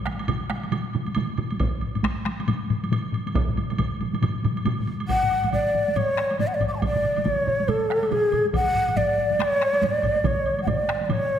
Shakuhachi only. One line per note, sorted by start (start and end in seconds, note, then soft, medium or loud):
5.08 5.49 F#5 medium
5.53 5.98 D5 medium
5.97 6.39 C#5 medium
6.40 6.49 D5 medium
6.47 6.56 F#5 medium
6.55 6.68 D5 medium
6.68 6.72 D6 soft
6.73 6.77 A5 soft
6.73 6.75 C#6 soft
6.77 6.82 F#5 soft
6.77 6.80 G#5 soft
6.82 7.26 D5 medium
7.25 7.70 C#5 medium
7.69 8.14 A4 medium
8.12 8.46 G#4 medium
8.56 8.98 F#5 medium
8.97 9.42 D5 medium
9.40 9.84 C#5 medium
9.83 10.28 D5 medium
10.26 10.63 C#5 medium
10.63 10.70 F#5 soft
10.68 11.05 D5 medium
11.05 11.13 D5 soft
11.11 11.39 C#5 medium